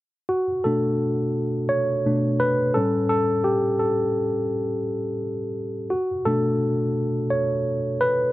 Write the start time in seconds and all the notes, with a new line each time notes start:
0.29 F#4
0.64 B2 A3 D4 A4
1.69 C#5
2.06 B2 A3 D4
2.40 B4
2.74 A2 G3 C#4 A4
3.09 A4
3.44 G4
3.79 A4
5.90 F#4
6.25 B2 A3 D4 A4
7.30 C#5
8.01 B4